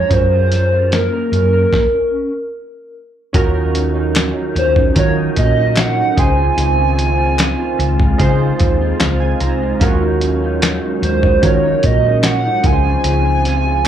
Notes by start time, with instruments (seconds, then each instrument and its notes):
Already playing: clean electric guitar F3 G#3 C#4 F4 A#4, synth keys C#4 F4 G#4 C5, soft synth lead C#5
0.09 fingered electric bass F#2, clean electric guitar F#3 A#4, synth keys C#4 F4 G#4 A#4, soft synth lead C5, kick, closed hi-hat
0.31 clean electric guitar F4
0.51 clean electric guitar C#4, snare, closed hi-hat
0.72 clean electric guitar F4
0.92 clean electric guitar A#3, soft synth lead A#4, snare, closed hi-hat
1.12 clean electric guitar A#4
1.32 fingered electric bass F#2, clean electric guitar C#4, closed hi-hat
1.53 clean electric guitar A#4
1.73 kick, snare
3.33 fingered electric bass D#2, analog synth pad D#3 F#3 D#4, clean electric guitar D#3 A#4, synth keys C#4 F4 F#4 A#4, kick, closed hi-hat
3.54 clean electric guitar D#4
3.74 clean electric guitar C#4, closed hi-hat
3.94 clean electric guitar D#4
4.14 clean electric guitar C#4, snare, clap, closed hi-hat
4.34 clean electric guitar D#4
4.54 fingered electric bass D#2, clean electric guitar C#4, soft synth lead C5, closed hi-hat
4.75 clean electric guitar D#4, kick
4.95 clean electric guitar D#3 A#4, fingered electric bass D#3, synth keys C#4 F4 F#4 A#4, soft synth lead C#5, kick, closed hi-hat
5.16 clean electric guitar D#4
5.35 fingered electric bass A#2, clean electric guitar C#4, soft synth lead D#5, kick, closed hi-hat
5.56 clean electric guitar D#4
5.76 clean electric guitar C#4, soft synth lead F#5, snare, clap, closed hi-hat
5.96 clean electric guitar D#4
6.16 fingered electric bass C#2, clean electric guitar C#3, analog synth pad C4 F4, synth keys D#4 F4 G#4 C5, soft synth lead G#5, kick, closed hi-hat
6.37 clean electric guitar F4
6.57 fingered electric bass C#2, clean electric guitar C#3 G#4, closed hi-hat
6.77 clean electric guitar F4
6.97 clean electric guitar C4, closed hi-hat
7.17 clean electric guitar F4
7.38 clean electric guitar C4, snare, clap, closed hi-hat
7.58 clean electric guitar F4
7.78 fingered electric bass C#2, analog synth pad G#3, clean electric guitar C4, closed hi-hat
7.99 clean electric guitar F4, kick
8.18 fingered electric bass C#3, synth keys D#4 F4 G#4 C5, clean electric guitar G#4, kick, closed hi-hat
8.40 clean electric guitar F4
8.60 fingered electric bass D#2, clean electric guitar C4, kick, closed hi-hat
8.81 clean electric guitar F4
9.00 fingered electric bass C#2, clean electric guitar C4, synth keys F5, snare, clap, closed hi-hat
9.20 clean electric guitar F4, synth keys G#5
9.40 fingered electric bass C2, clean electric guitar C4, synth keys A#5, closed hi-hat
9.62 clean electric guitar F4
9.80 fingered electric bass D#2, analog synth pad D#3 F#3, clean electric guitar D#3 A#4, synth keys C#4 F4 F#4 A#4, kick, closed hi-hat
10.01 clean electric guitar D#4
10.21 clean electric guitar C#4, closed hi-hat
10.42 clean electric guitar D#4
10.61 clean electric guitar C#4, snare, clap, closed hi-hat
10.82 clean electric guitar D#4
11.02 fingered electric bass D#2, clean electric guitar C#4, soft synth lead C5, closed hi-hat
11.23 clean electric guitar D#4, kick
11.42 fingered electric bass D#3, clean electric guitar D#3 A#4, synth keys C#4 F4 F#4 A#4, soft synth lead C#5, kick, closed hi-hat
11.63 clean electric guitar D#4
11.83 fingered electric bass A#2, clean electric guitar C#4, soft synth lead D#5, kick, closed hi-hat
12.04 clean electric guitar D#4
12.23 clean electric guitar C#4, soft synth lead F#5, snare, clap, closed hi-hat
12.44 clean electric guitar D#4
12.63 fingered electric bass C#2, clean electric guitar C#3, analog synth pad F3 C4 F4, synth keys D#4 F4 G#4 A#4, soft synth lead G#5, kick, closed hi-hat
12.72 synth keys C5
12.85 clean electric guitar F4
13.04 fingered electric bass C#2, clean electric guitar C#3 G#4, closed hi-hat
13.25 clean electric guitar F4
13.45 clean electric guitar C4, snare, closed hi-hat
13.66 clean electric guitar F4